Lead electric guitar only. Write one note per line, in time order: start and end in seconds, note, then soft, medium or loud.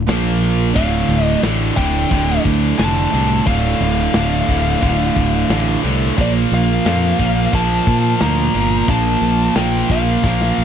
0.76 1.24 F5 loud
1.24 1.40 D#5 loud
1.77 2.41 G5 loud
2.79 3.49 A5 loud
3.47 3.78 F5 loud
3.82 5.80 F5 medium
6.21 6.30 D5 medium
6.54 7.57 F5 loud
7.55 8.24 A5 loud
8.22 8.91 A#5 loud
8.90 9.56 A5 loud
9.57 9.91 G5 medium
9.91 10.64 F5 medium